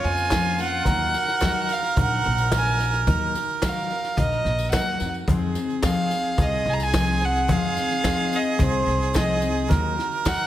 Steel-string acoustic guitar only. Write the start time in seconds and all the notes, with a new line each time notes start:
Already playing: A#3 C#4 F4 A#4
0.30 A#2 F3 A#3 C#4 F4 A#4
0.58 A#3 C#4 F4 A#4
0.86 D#3 F#3 D#4 F#4 A#4
1.15 D#4 F#4 A#4
1.43 D#3 F#3 D#4 F#4 A#4
1.71 D#4 A#4
1.98 F#3 D#4 F#4 A#4
2.53 D#3 F#3 D#4 F#4 A#4
2.80 D#4 F#4 A#4
3.07 D#3 F#3 D#4 F#4 A#4
3.35 D#4 F#4 A#4
3.62 D#3 F#3 D#4 F#4 A#4
3.91 D#4 F#4 A#4
4.19 F#3 D#4 F#4 A#4
4.74 D#3 F#3 D#4 F#4 A#4
5.03 D#4 F#4 A#4
5.28 F3 G#3 C4 D#4 C5
5.55 C4 D#4 C5
5.83 F3 G#3 C4 D#4 C5
6.11 C4 D#4 C5
6.37 G#3 C4 D#4 C5
6.93 F3 G#3 C4 D#4 C5
7.21 C4 D#4 C5
7.48 F3 G#3 C4 D#4 C5
7.76 C4 D#4 C5
8.03 F3 G#3 C4 D#4 C5
8.29 C4 D#4 C5
8.57 G#3 C4 D#4 C5
9.13 F3 G#3 C4 D#4 C5
9.39 C4 D#4 C5
9.67 D#3 F#3 D#4 F#4 A#4
9.96 D#4 F#4 A#4
10.24 D#3 F#3 D#4 F#4 A#4